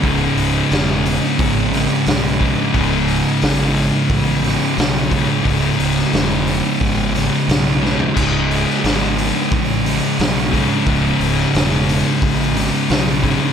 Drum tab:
CC |----------------|----------------|----------------|x---------------|
HH |o-o-o-o-o-o-o-o-|o-o-o-o-o-o-o-o-|o-o-o-o-o-o-o---|--o-o-o-o-o-o-o-|
SD |----o-----o-o---|----o-----o-o---|---oo-----o-o-o-|---oo-------o---|
FT |----------------|----------------|---------------o|----------------|
BD |o-------o-----o-|o-------o-----o-|o-------o-------|o-------o-----o-|

CC |----------------|
HH |o-o-o-o-o-o-o-o-|
SD |---oo-----o-o---|
FT |----------------|
BD |o-------o-----o-|